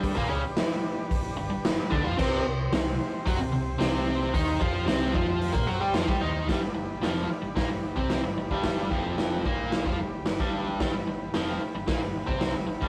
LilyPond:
<<
  \new Staff \with { instrumentName = "Transistor combo organ" } { \time 4/4 \key g \mixolydian \tempo 4 = 112 <d' g' b'>1 | <c' g' c''>1~ | <c' g' c''>1 | <g' d'' b''>1~ |
<g' d'' b''>1 | <g' b'>1 | }
  \new Staff \with { instrumentName = "Overdriven electric guitar" } { \clef bass \time 4/4 \key g \mixolydian <g, g>16 <bes, bes>16 <cis cis'>16 r4. r16 g,16 g,8 r16 <d d'>16 <f f'>16 | <c c'>8 c8 c8 r8 <fis fis'>16 c16 c8 <c c'>4 | <ees ees'>8 <f f'>8 <c c'>8 <f f'>8. <bes bes'>16 <fis fis'>16 <g g'>16 <f f'>16 <g g'>16 <ees ees'>8 | <g, g>16 g,16 g,8 <f, f>8 r16 g,16 <bes, bes>16 g,8 <c c'>8 g,16 g,16 <g, g>16~ |
<g, g>8 <f, f>4 <bes, bes>8. <f f'>16 g,8 g,16 <g, g>8. | <g, g>16 g,16 g,8 <f, f>8 r16 g,16 <bes, bes>16 g,8 <c c'>8 g,16 g,16 <g, g>16 | }
  \new Staff \with { instrumentName = "Fingered electric bass" } { \clef bass \time 4/4 \key g \mixolydian g,,16 bes,,16 cis,16 r4. r16 g,,16 g,,8 r16 d,16 f,16 | c,8 c,8 c,8 r8 fis,16 c,16 c,8 c,4 | ees,8 f,8 c,8 f,8. bes,16 fis,16 g,16 f,16 g,16 ees,8 | g,,16 g,,16 g,,8 f,,8 r16 g,,16 bes,,16 g,,8 c,8 g,,16 g,,16 g,,16~ |
g,,8 f,,4 bes,,8. f,16 g,,8 g,,16 g,,8. | g,,16 g,,16 g,,8 f,,8 r16 g,,16 bes,,16 g,,8 c,8 g,,16 g,,16 g,,16 | }
  \new DrumStaff \with { instrumentName = "Drums" } \drummode { \time 4/4 <hho bd>16 bd8. <hho sn>4 <hho bd>4 <hho sn>8 bd8 | <cymc bd>4 <hho sn>4 <hho bd>4 <hho sn>4 | <hho bd>8 bd8 <hho sn>8 bd8 hho16 bd8. <hho sn>16 bd8. | <hho bd sn>4 <hho sn>4 <hho bd sn>8. bd16 <hho sn>8. bd16 |
<hho bd sn>8 bd8 <hho sn>8 bd8 <hho sn>16 bd8. <hho sn>16 bd8. | <hho bd sn>4 <hho sn>4 <hho bd sn>8. bd16 <hho sn>8. bd16 | }
>>